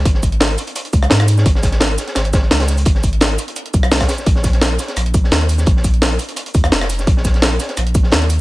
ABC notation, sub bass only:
X:1
M:4/4
L:1/8
Q:1/4=171
K:Bbphr
V:1 name="Sub bass" clef=bass
A,,,3 z2 D,, A,,2 | A,,,3 z A,,,2 D,,2 | A,,,3 z2 C,,2 z | B,,,3 z B,,,2 E,,2 |
B,,,3 z2 E,, F,,,2 | B,,,3 z B,,,2 E,,2 |]